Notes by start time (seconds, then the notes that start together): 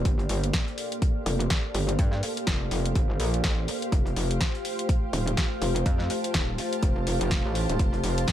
Already playing: A#3 G4 C5 D5 F5
0.05 G1 A4, kick, closed hi-hat
0.19 closed hi-hat
0.29 G1, closed hi-hat, open hi-hat
0.44 closed hi-hat
0.53 kick, snare, closed hi-hat
0.68 closed hi-hat
0.78 closed hi-hat, open hi-hat
0.92 closed hi-hat
1.02 kick, closed hi-hat
1.26 F1, closed hi-hat, open hi-hat
1.40 closed hi-hat
1.50 kick, snare, closed hi-hat
1.75 G1, closed hi-hat, open hi-hat
1.89 closed hi-hat
1.99 G2, kick, closed hi-hat
2.13 snare
2.23 closed hi-hat, open hi-hat
2.37 closed hi-hat
2.47 F1, kick, snare, closed hi-hat
2.71 F1, open hi-hat
2.86 closed hi-hat
2.95 G1, kick, closed hi-hat
3.10 G1
3.20 A#1, closed hi-hat, open hi-hat
3.34 closed hi-hat
3.44 A1, kick, snare, closed hi-hat
3.68 closed hi-hat, open hi-hat
3.82 closed hi-hat
3.92 F1 A3 F4 C5, kick, closed hi-hat
4.07 closed hi-hat
4.16 F1, closed hi-hat, open hi-hat
4.31 closed hi-hat
4.41 kick, snare, closed hi-hat
4.55 closed hi-hat
4.65 closed hi-hat, open hi-hat
4.79 closed hi-hat
4.89 kick, closed hi-hat
5.13 D#1, closed hi-hat, open hi-hat
5.17 A5
5.27 closed hi-hat
5.37 kick, snare, closed hi-hat
5.62 F1, closed hi-hat, open hi-hat
5.76 closed hi-hat
5.86 F2, kick, closed hi-hat
6.00 snare
6.10 closed hi-hat, open hi-hat
6.24 closed hi-hat
6.34 D#1, kick, snare, closed hi-hat
6.58 open hi-hat
6.73 closed hi-hat
6.83 F1, kick, closed hi-hat
7.07 closed hi-hat, open hi-hat
7.21 F1, closed hi-hat
7.31 kick, snare, closed hi-hat
7.45 A1
7.55 closed hi-hat, open hi-hat
7.69 D#1, closed hi-hat
7.79 F1 D#4, kick, closed hi-hat
7.94 closed hi-hat
8.04 F1, closed hi-hat, open hi-hat
8.18 closed hi-hat
8.28 kick, snare, closed hi-hat